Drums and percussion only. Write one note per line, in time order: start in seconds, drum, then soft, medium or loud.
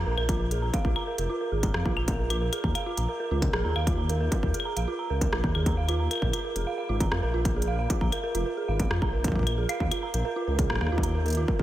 0.18 claves medium
0.29 kick loud
0.29 closed hi-hat medium
0.51 closed hi-hat medium
0.74 kick loud
0.74 closed hi-hat medium
0.85 kick medium
0.96 claves medium
1.18 closed hi-hat medium
1.63 kick loud
1.63 closed hi-hat medium
1.74 cross-stick loud
1.86 kick loud
1.97 claves medium
2.08 kick loud
2.08 closed hi-hat medium
2.30 closed hi-hat medium
2.30 claves medium
2.53 closed hi-hat medium
2.53 claves medium
2.64 kick medium
2.75 closed hi-hat medium
2.75 claves medium
2.97 closed hi-hat medium
3.42 kick loud
3.42 closed hi-hat medium
3.53 cross-stick loud
3.76 claves medium
3.87 kick loud
3.87 closed hi-hat medium
4.09 closed hi-hat medium
4.32 kick loud
4.32 closed hi-hat medium
4.43 kick medium
4.54 closed hi-hat soft
4.60 claves medium
4.77 closed hi-hat medium
5.21 kick loud
5.21 closed hi-hat medium
5.33 cross-stick loud
5.44 kick loud
5.55 claves medium
5.66 kick loud
5.66 closed hi-hat medium
5.89 closed hi-hat soft
5.89 claves medium
6.11 closed hi-hat medium
6.11 claves medium
6.13 claves medium
6.15 claves soft
6.22 kick medium
6.33 closed hi-hat soft
6.33 claves medium
6.56 closed hi-hat medium
7.00 kick loud
7.00 closed hi-hat medium
7.12 cross-stick loud
7.45 kick loud
7.45 closed hi-hat medium
7.62 closed hi-hat soft
7.90 kick loud
7.90 closed hi-hat medium
8.01 kick medium
8.12 closed hi-hat soft
8.12 claves medium
8.35 closed hi-hat medium
8.80 kick loud
8.80 closed hi-hat medium
8.91 cross-stick loud
9.02 kick medium
9.24 kick loud
9.24 closed hi-hat medium
9.28 kick medium
9.32 kick medium
9.36 kick medium
9.39 kick soft
9.43 kick soft
9.43 closed hi-hat soft
9.43 claves medium
9.69 closed hi-hat medium
9.69 claves medium
9.80 kick medium
9.91 closed hi-hat soft
9.91 claves medium
10.14 closed hi-hat medium
10.59 kick loud
10.59 closed hi-hat medium
10.70 cross-stick loud
10.75 cross-stick medium
10.81 cross-stick medium
10.87 cross-stick medium
10.98 kick loud
11.03 closed hi-hat medium
11.26 closed hi-hat soft
11.28 closed hi-hat soft
11.30 closed hi-hat soft
11.33 closed hi-hat soft
11.35 closed hi-hat soft
11.48 kick loud
11.59 kick medium